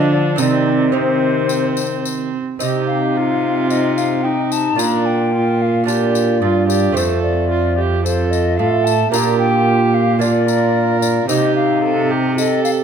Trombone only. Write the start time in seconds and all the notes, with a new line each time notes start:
Already playing: F3
0.39 D#3
0.95 D#3
2.61 D#4
3.71 D#4
4.25 D#4
4.78 F4
5.89 F4
6.97 F4
8.06 F4
8.60 F4
9.14 F4
10.22 F4
11.30 D#4
12.38 G4